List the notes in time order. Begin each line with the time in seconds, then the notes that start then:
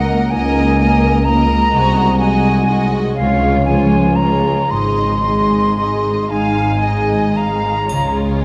Already playing: C#2 C#3 A#3 C#4 A#4 C#5 D#5 F#5
0.31 C#2 A#3 D#4 A#4 D#5 G#5
0.79 A#3 A#4 D#5
1.25 A#3 A#4 D#5 A#5
1.73 C2 C3 G#3 F#4 D#5
2.19 F#3 G#3 F#4 D#5 G#5
2.67 G#3 D#4 F#4 G#4 D#5
3.15 C#2 C#3 G#3 F4 C#5 F5
3.65 F3 G#3 F4 C#5 G#5
4.16 G#3 F4 G#4 C#5 A#5
4.71 G#1 G#2 G#3 D#4 D#5 C6
5.25 G#3 D#4 D#5
5.78 G#3 D#4 G#4 D#5
6.30 G#1 G#2 G#3 D#4 F5 G#5
6.83 G#3 D#4 G#4 D#5
7.37 G#3 D#4 F5 A#5
7.89 C#2 C#3 G#3 F4 C#5, triangle
8.42 G#5